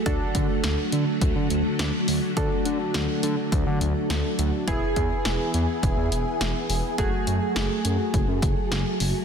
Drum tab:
HH |xxxxxxxo|xxxxxxxx|xxxxxxxo|xxxxxxxo|
SD |--o---o-|--o---o-|--o---o-|--o---o-|
BD |oo--o---|o---o---|oo--o---|o---oo--|